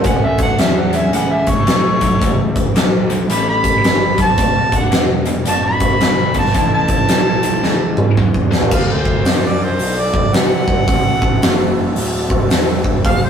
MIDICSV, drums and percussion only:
0, 0, Header, 1, 2, 480
1, 0, Start_track
1, 0, Tempo, 541516
1, 47, Time_signature, 4, 2, 24, 8
1, 11788, End_track
2, 0, Start_track
2, 0, Title_t, "Drums"
2, 34, Note_on_c, 9, 42, 76
2, 40, Note_on_c, 9, 36, 94
2, 123, Note_off_c, 9, 42, 0
2, 129, Note_off_c, 9, 36, 0
2, 340, Note_on_c, 9, 42, 61
2, 343, Note_on_c, 9, 36, 81
2, 428, Note_off_c, 9, 42, 0
2, 432, Note_off_c, 9, 36, 0
2, 518, Note_on_c, 9, 42, 84
2, 527, Note_on_c, 9, 38, 104
2, 607, Note_off_c, 9, 42, 0
2, 616, Note_off_c, 9, 38, 0
2, 823, Note_on_c, 9, 42, 50
2, 912, Note_off_c, 9, 42, 0
2, 1003, Note_on_c, 9, 42, 65
2, 1092, Note_off_c, 9, 42, 0
2, 1300, Note_on_c, 9, 42, 54
2, 1305, Note_on_c, 9, 36, 81
2, 1389, Note_off_c, 9, 42, 0
2, 1394, Note_off_c, 9, 36, 0
2, 1480, Note_on_c, 9, 42, 71
2, 1489, Note_on_c, 9, 38, 91
2, 1569, Note_off_c, 9, 42, 0
2, 1578, Note_off_c, 9, 38, 0
2, 1782, Note_on_c, 9, 42, 53
2, 1785, Note_on_c, 9, 36, 69
2, 1870, Note_off_c, 9, 42, 0
2, 1874, Note_off_c, 9, 36, 0
2, 1962, Note_on_c, 9, 42, 71
2, 1965, Note_on_c, 9, 36, 101
2, 2051, Note_off_c, 9, 42, 0
2, 2053, Note_off_c, 9, 36, 0
2, 2266, Note_on_c, 9, 42, 50
2, 2267, Note_on_c, 9, 36, 79
2, 2355, Note_off_c, 9, 42, 0
2, 2356, Note_off_c, 9, 36, 0
2, 2444, Note_on_c, 9, 42, 78
2, 2453, Note_on_c, 9, 38, 111
2, 2533, Note_off_c, 9, 42, 0
2, 2542, Note_off_c, 9, 38, 0
2, 2746, Note_on_c, 9, 42, 54
2, 2835, Note_off_c, 9, 42, 0
2, 2922, Note_on_c, 9, 42, 74
2, 3011, Note_off_c, 9, 42, 0
2, 3226, Note_on_c, 9, 36, 73
2, 3228, Note_on_c, 9, 42, 56
2, 3315, Note_off_c, 9, 36, 0
2, 3317, Note_off_c, 9, 42, 0
2, 3406, Note_on_c, 9, 42, 73
2, 3415, Note_on_c, 9, 38, 108
2, 3495, Note_off_c, 9, 42, 0
2, 3504, Note_off_c, 9, 38, 0
2, 3706, Note_on_c, 9, 36, 79
2, 3706, Note_on_c, 9, 42, 57
2, 3794, Note_off_c, 9, 36, 0
2, 3794, Note_off_c, 9, 42, 0
2, 3880, Note_on_c, 9, 42, 80
2, 3883, Note_on_c, 9, 36, 95
2, 3968, Note_off_c, 9, 42, 0
2, 3972, Note_off_c, 9, 36, 0
2, 4186, Note_on_c, 9, 36, 81
2, 4188, Note_on_c, 9, 42, 58
2, 4275, Note_off_c, 9, 36, 0
2, 4276, Note_off_c, 9, 42, 0
2, 4360, Note_on_c, 9, 42, 77
2, 4369, Note_on_c, 9, 38, 105
2, 4449, Note_off_c, 9, 42, 0
2, 4457, Note_off_c, 9, 38, 0
2, 4658, Note_on_c, 9, 42, 55
2, 4747, Note_off_c, 9, 42, 0
2, 4835, Note_on_c, 9, 42, 77
2, 4924, Note_off_c, 9, 42, 0
2, 5143, Note_on_c, 9, 42, 53
2, 5146, Note_on_c, 9, 36, 75
2, 5232, Note_off_c, 9, 42, 0
2, 5235, Note_off_c, 9, 36, 0
2, 5324, Note_on_c, 9, 42, 69
2, 5333, Note_on_c, 9, 38, 99
2, 5412, Note_off_c, 9, 42, 0
2, 5421, Note_off_c, 9, 38, 0
2, 5621, Note_on_c, 9, 42, 50
2, 5626, Note_on_c, 9, 36, 66
2, 5710, Note_off_c, 9, 42, 0
2, 5714, Note_off_c, 9, 36, 0
2, 5719, Note_on_c, 9, 38, 31
2, 5799, Note_on_c, 9, 42, 73
2, 5802, Note_on_c, 9, 36, 88
2, 5808, Note_off_c, 9, 38, 0
2, 5887, Note_off_c, 9, 42, 0
2, 5891, Note_off_c, 9, 36, 0
2, 6101, Note_on_c, 9, 42, 49
2, 6104, Note_on_c, 9, 36, 82
2, 6189, Note_off_c, 9, 42, 0
2, 6193, Note_off_c, 9, 36, 0
2, 6281, Note_on_c, 9, 42, 82
2, 6290, Note_on_c, 9, 38, 104
2, 6370, Note_off_c, 9, 42, 0
2, 6379, Note_off_c, 9, 38, 0
2, 6586, Note_on_c, 9, 42, 60
2, 6675, Note_off_c, 9, 42, 0
2, 6767, Note_on_c, 9, 38, 52
2, 6856, Note_off_c, 9, 38, 0
2, 7065, Note_on_c, 9, 47, 61
2, 7154, Note_off_c, 9, 47, 0
2, 7245, Note_on_c, 9, 36, 72
2, 7334, Note_off_c, 9, 36, 0
2, 7396, Note_on_c, 9, 36, 69
2, 7485, Note_off_c, 9, 36, 0
2, 7554, Note_on_c, 9, 38, 72
2, 7633, Note_on_c, 9, 43, 79
2, 7643, Note_off_c, 9, 38, 0
2, 7722, Note_off_c, 9, 43, 0
2, 7724, Note_on_c, 9, 36, 103
2, 7724, Note_on_c, 9, 49, 94
2, 7813, Note_off_c, 9, 36, 0
2, 7813, Note_off_c, 9, 49, 0
2, 8026, Note_on_c, 9, 36, 77
2, 8114, Note_off_c, 9, 36, 0
2, 8202, Note_on_c, 9, 46, 57
2, 8211, Note_on_c, 9, 38, 102
2, 8291, Note_off_c, 9, 46, 0
2, 8299, Note_off_c, 9, 38, 0
2, 8680, Note_on_c, 9, 46, 49
2, 8769, Note_off_c, 9, 46, 0
2, 8985, Note_on_c, 9, 36, 84
2, 9074, Note_off_c, 9, 36, 0
2, 9160, Note_on_c, 9, 46, 49
2, 9169, Note_on_c, 9, 38, 108
2, 9249, Note_off_c, 9, 46, 0
2, 9257, Note_off_c, 9, 38, 0
2, 9464, Note_on_c, 9, 36, 79
2, 9553, Note_off_c, 9, 36, 0
2, 9641, Note_on_c, 9, 46, 51
2, 9642, Note_on_c, 9, 36, 104
2, 9729, Note_off_c, 9, 46, 0
2, 9731, Note_off_c, 9, 36, 0
2, 9945, Note_on_c, 9, 36, 84
2, 10033, Note_off_c, 9, 36, 0
2, 10124, Note_on_c, 9, 46, 53
2, 10133, Note_on_c, 9, 38, 114
2, 10213, Note_off_c, 9, 46, 0
2, 10222, Note_off_c, 9, 38, 0
2, 10602, Note_on_c, 9, 46, 59
2, 10690, Note_off_c, 9, 46, 0
2, 10904, Note_on_c, 9, 36, 82
2, 10993, Note_off_c, 9, 36, 0
2, 11083, Note_on_c, 9, 46, 61
2, 11092, Note_on_c, 9, 38, 107
2, 11171, Note_off_c, 9, 46, 0
2, 11180, Note_off_c, 9, 38, 0
2, 11385, Note_on_c, 9, 36, 77
2, 11473, Note_off_c, 9, 36, 0
2, 11564, Note_on_c, 9, 36, 100
2, 11566, Note_on_c, 9, 46, 52
2, 11653, Note_off_c, 9, 36, 0
2, 11655, Note_off_c, 9, 46, 0
2, 11788, End_track
0, 0, End_of_file